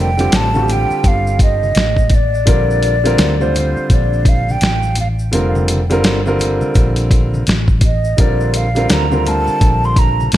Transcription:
Already playing: F1
0.00 G5
0.17 D3 G3 C4 F4 G4, closed hi-hat, shaker
0.32 A1 A5, snare, closed hi-hat, low conga, shaker
0.53 D3 G3 C4 F4 F#4, high conga, shaker
0.63 G4
0.68 G5, closed hi-hat, low conga, shaker
0.91 muted fretless electric bass stroke, shaker
1.04 G1 F5, kick, closed hi-hat, shaker
1.27 shaker
1.39 D#5, kick, closed hi-hat, shaker
1.63 high conga, shaker
1.75 A1, snare, closed hi-hat, shaker
1.96 kick, shaker
2.10 kick, closed hi-hat, low conga, shaker
2.14 D5
2.34 shaker
2.46 A#1 D3 G3 C4 F4 A#4, kick, closed hi-hat, shaker
2.70 shaker
2.83 closed hi-hat, shaker
3.04 D3 G3 C4 F4 A#4, closed hi-hat, shaker
3.18 D2, snare, closed hi-hat, low conga, shaker
3.39 D3 G3 C4 F4 C5, high conga, shaker
3.54 C5, closed hi-hat, low conga, shaker
3.77 muted fretless electric bass stroke, shaker
3.90 A#1 D5, kick, closed hi-hat, shaker
4.13 shaker
4.25 F5, kick, closed hi-hat, shaker
4.49 G5, high conga, shaker
4.61 A1, snare, closed hi-hat, shaker
4.83 shaker
4.95 closed hi-hat, low conga, shaker
5.00 F5
5.19 shaker
5.32 F1 D3 G3 C4 F4 A#4, closed hi-hat, shaker
5.55 high conga, shaker
5.68 closed hi-hat, high conga, shaker
5.90 D3 G3 C4 F4 A#4, closed hi-hat, shaker
6.04 G1, snare, closed hi-hat, low conga, shaker
6.26 D3 G3 C4 F4 A#4, shaker
6.39 closed hi-hat, low conga, shaker
6.61 muted fretless electric bass stroke, high conga, shaker
6.74 A#1, kick, closed hi-hat, shaker
6.96 closed hi-hat, shaker
7.11 kick, closed hi-hat, shaker
7.34 high conga, shaker
7.47 A1, snare, closed hi-hat, shaker
7.68 kick, shaker
7.81 D#5, kick, closed hi-hat, low conga, shaker
8.04 shaker
8.17 A#1 D3 G3 C4 F4 A#4 D5, kick, closed hi-hat, shaker
8.40 shaker
8.54 F5, closed hi-hat, shaker
8.75 D3 G3 C4 F4 A#4, closed hi-hat, shaker
8.89 D2 A#5, snare, closed hi-hat, low conga, shaker
9.10 D3 G3 C4 F4 A#4, high conga, shaker
9.25 A5, closed hi-hat, low conga, shaker
9.47 muted fretless electric bass stroke, shaker
9.61 A#1, kick, closed hi-hat, shaker
9.84 C6, shaker
9.96 A#5, kick, closed hi-hat, shaker
10.20 high conga, shaker
10.32 A1 A5, closed hi-hat, shaker

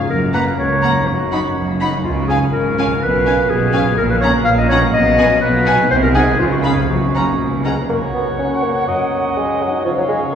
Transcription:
Already playing: F#2 C#3 G#3 A#3 F4 G#4 C#5
0.02 C#4
0.06 F#1 F#2 F#4
0.10 A#4
0.33 A#3 B4 F#5 A#5
0.59 C#2 C#5
0.82 A#3 F#5 A#5
0.90 F#2
0.95 B3
0.99 D#4
1.04 F#1 F#4
1.08 F#2
1.31 D#4 F#5 B5
1.56 F#1 F#2
1.81 D#4 F#5 B5
1.87 C#3
1.92 G#3
1.96 C#4
2.01 C#3 F4
2.05 C#2
2.16 F#4
2.28 C#4 G#4 F5 G#5
2.52 G#1 G#2 A#4
2.78 C#4 F5 G#5
2.84 B2
2.89 G#3
2.93 C#4
2.98 B1 F4
3.02 B2 B4
3.26 C#4 F5 G#5
3.50 B1 B2 G#4
3.73 C#4 F5 G#5
3.81 A#2
3.85 A#3
3.90 C#4
3.94 A#1 A#2 F#4 A#4
4.10 B4
4.21 C#4 C#5 F#5 A#5
4.45 A#1 A#2 F5
4.58 D#5
4.69 C#4 C#5 F#5 A#5
4.76 B2
4.81 G#3
4.85 B3
4.90 F#4 D#5
4.95 B1 B2
5.18 B3 F#5 G#5
5.41 B1 B2 B4
5.66 B3 F#5 G#5
5.73 C3
5.77 G#3
5.82 D#4
5.87 F#4
5.91 C2 C3 C5
6.03 A#4
6.15 D#4 G#4 F#5 G#5
6.22 C#3
6.27 B3
6.31 C#4
6.36 C#2 F4
6.40 C#3
6.52 F#4
6.64 C#4 G#4 F5 B5
6.71 F#2
6.76 A#3
6.80 C#4 G#4
6.85 F#4
6.90 F#1 F#2 F#4
7.15 C#4 F#5 A#5
7.40 C#2
7.64 G#3 C#4 F#5 A#5
7.89 F#2 A#3 F#4 C#5 F#5
8.06 A#3
8.14 B3
8.23 F#4
8.38 C#4 A#4
8.55 F#4
8.63 A#3
8.87 F#2 F#3 D#5
9.04 B3
9.20 F#4
9.36 G#3 B4
9.52 F#4
9.61 F#3
9.69 D#4
9.84 C#3 F3 C#4 C#5 F5
9.98 F#3 C#4
10.09 G#3
10.17 G#4

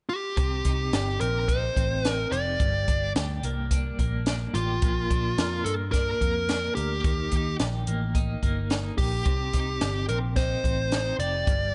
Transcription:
0.09 G4
0.37 C2 C3, kick, closed hi-hat
0.65 C2 D#4, kick, closed hi-hat
0.93 G1 G4, snare, closed hi-hat
1.21 A#1 C4 A#4, closed hi-hat
1.48 D#4 C5, kick, closed hi-hat
1.76 A1 C4, kick, closed hi-hat
2.05 D#4, snare, closed hi-hat
2.10 A#4
2.32 F1 G4 D5, closed hi-hat
2.60 G1 G2, kick, closed hi-hat
2.88 G1 D4, kick, closed hi-hat
3.15 D2 G4, snare, closed hi-hat
3.43 C2 A#3, closed hi-hat
3.71 D4, kick, closed hi-hat
3.99 A#1 A#3, kick, closed hi-hat
4.26 D4, snare, closed hi-hat
4.54 A1 F4 G4, closed hi-hat
4.82 A#1 A#2, kick, closed hi-hat
5.10 A#1 D4, kick, closed hi-hat
5.38 F2 A#4, snare, closed hi-hat
5.65 G2 A#3 A4, closed hi-hat
5.92 D4 A#4, kick, snare, closed hi-hat
6.21 F2 A#3, kick, closed hi-hat
6.49 D4, snare, closed hi-hat
6.75 D2 G4 A#4, closed hi-hat
7.04 D#2 D#3, kick, closed hi-hat
7.32 D#2 D#4, kick, closed hi-hat
7.60 A#1 G4, snare, closed hi-hat
7.87 A1 A#3, closed hi-hat
8.15 D#4, kick, closed hi-hat
8.43 G1 A#3, kick, closed hi-hat
8.70 D#4, snare, closed hi-hat
8.98 A#1 G4, kick, open hi-hat
9.26 C2 C3, kick, closed hi-hat
9.53 C2 D#4, kick, closed hi-hat
9.81 G1 G4, snare, closed hi-hat
10.09 A#1 C4 A#4, closed hi-hat
10.36 D#4 C5, kick, snare, closed hi-hat
10.64 A1 C4, kick, closed hi-hat
10.92 D#4, snare, closed hi-hat
11.19 F1 G4 D5, closed hi-hat
11.47 G1 G2, kick, closed hi-hat

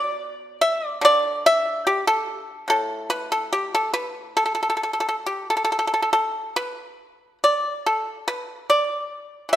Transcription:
Already playing: B2 D5
0.61 E5
0.86 D5
1.01 D3 D5
1.46 E5
1.87 G4
2.07 A4
2.68 A2 A4
3.10 B4
3.32 A4
3.53 G4
3.75 A4
3.94 B4
4.37 A4
4.46 A4
4.55 A4
4.63 A4
4.70 A4
4.77 A4
4.83 A4
4.93 A4
5.00 A4
5.09 A4
5.26 G4
5.50 A4
5.57 A4
5.65 A4
5.72 A4
5.79 A4
5.87 A4
5.94 A4
6.02 A4
6.13 A4
6.56 B4
7.44 D5
7.86 A4
8.28 B4
8.70 D5
9.49 E3 E5

